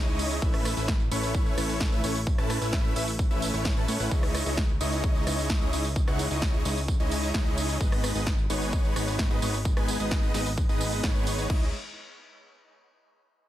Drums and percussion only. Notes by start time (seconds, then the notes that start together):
0.08 tambourine
0.19 open hi-hat, tambourine
0.31 tambourine
0.42 kick, tambourine
0.54 cross-stick, open hi-hat, tambourine
0.65 cross-stick, open hi-hat, tambourine
0.77 tambourine
0.88 kick, snare, tambourine
1.00 tambourine
1.11 open hi-hat, tambourine
1.23 tambourine
1.34 kick, tambourine
1.46 tambourine
1.58 cross-stick, open hi-hat, tambourine
1.69 tambourine
1.80 kick, snare, tambourine
1.92 tambourine
2.04 open hi-hat, tambourine
2.15 tambourine
2.27 kick, tambourine
2.38 cross-stick, tambourine
2.50 cross-stick, open hi-hat, tambourine
2.62 tambourine
2.73 kick, snare, tambourine
2.85 tambourine
2.96 open hi-hat, tambourine
3.08 tambourine
3.19 kick, tambourine
3.31 tambourine
3.42 open hi-hat, tambourine
3.54 tambourine
3.65 kick, snare, tambourine
3.77 tambourine
3.88 open hi-hat, tambourine
4.00 tambourine
4.11 kick, tambourine
4.23 cross-stick, open hi-hat, tambourine
4.35 cross-stick, open hi-hat, tambourine
4.46 tambourine
4.57 kick, snare, tambourine
4.69 tambourine
4.81 open hi-hat, tambourine
4.92 tambourine
5.04 kick, tambourine
5.15 tambourine
5.27 cross-stick, open hi-hat, tambourine
5.38 tambourine
5.50 kick, snare, tambourine
5.62 tambourine
5.73 open hi-hat, tambourine
5.85 tambourine
5.96 kick, tambourine
6.08 cross-stick, tambourine
6.19 open hi-hat, tambourine
6.31 tambourine
6.42 kick, snare, tambourine
6.54 tambourine
6.65 open hi-hat, tambourine
6.77 tambourine
6.88 kick, tambourine
7.00 tambourine
7.11 open hi-hat, tambourine
7.23 tambourine
7.34 kick, snare, tambourine
7.46 tambourine
7.58 open hi-hat, tambourine
7.69 tambourine
7.81 kick, tambourine
7.92 cross-stick, open hi-hat, tambourine
8.04 cross-stick, open hi-hat, tambourine
8.15 tambourine
8.27 kick, snare, tambourine
8.38 tambourine
8.50 open hi-hat, tambourine
8.62 tambourine
8.73 kick, tambourine
8.85 tambourine
8.96 cross-stick, open hi-hat, tambourine
9.08 tambourine
9.19 kick, snare, tambourine
9.31 tambourine
9.42 open hi-hat, tambourine
9.54 tambourine
9.65 kick, tambourine
9.77 cross-stick, tambourine
9.88 open hi-hat, tambourine
10.00 tambourine
10.11 kick, snare, tambourine
10.23 tambourine
10.34 snare, open hi-hat, tambourine
10.46 tambourine
10.58 kick, tambourine
10.69 tambourine
10.81 open hi-hat, tambourine
10.92 tambourine
11.03 kick, snare, tambourine
11.15 tambourine
11.27 open hi-hat, tambourine
11.38 tambourine
11.50 kick, crash